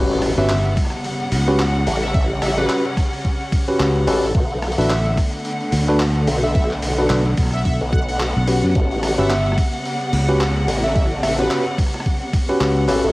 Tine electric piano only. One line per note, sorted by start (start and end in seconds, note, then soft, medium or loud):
0.00 0.31 C#4 loud
0.00 0.31 F#4 medium
0.00 0.31 G4 medium
0.00 0.31 B4 loud
0.38 0.51 C#4 medium
0.38 0.51 F#4 medium
0.38 0.51 G4 medium
0.38 0.51 B4 loud
1.48 1.61 C#4 loud
1.48 1.61 F#4 medium
1.48 1.61 G4 medium
1.48 1.61 B4 loud
2.58 2.82 C#4 medium
2.58 2.82 F#4 medium
2.58 2.82 G4 medium
2.58 2.82 B4 loud
3.68 4.04 C#4 medium
3.68 4.04 F#4 medium
3.68 4.04 G4 medium
3.68 4.04 B4 loud
4.07 4.25 C#4 loud
4.07 4.25 F#4 medium
4.07 4.25 G4 medium
4.07 4.25 B4 loud
4.78 4.92 D4 medium
4.78 4.92 F#4 medium
4.78 4.92 A4 medium
4.78 4.92 B4 loud
5.88 6.02 D4 loud
5.88 6.02 F#4 medium
5.88 6.02 A4 medium
5.88 6.02 B4 loud
6.98 7.23 D4 medium
6.98 7.23 F#4 medium
6.98 7.23 A4 medium
6.98 7.23 B4 medium
8.47 9.15 C#4 medium
8.47 9.15 F#4 medium
8.47 9.15 G4 medium
8.47 9.15 B4 medium
9.18 9.32 C#4 medium
9.18 9.32 F#4 medium
9.18 9.32 G4 medium
9.18 9.32 B4 loud
10.29 10.42 C#4 loud
10.29 10.42 F#4 medium
10.29 10.42 G4 medium
10.29 10.42 B4 loud
11.39 11.63 C#4 medium
11.39 11.63 F#4 medium
11.39 11.63 G4 medium
11.39 11.63 B4 medium
12.49 12.85 C#4 loud
12.49 12.85 F#4 medium
12.49 12.85 G4 medium
12.49 12.85 B4 loud
12.88 13.05 C#4 loud
12.88 13.05 F#4 medium
12.88 13.05 G4 medium
12.88 13.05 B4 loud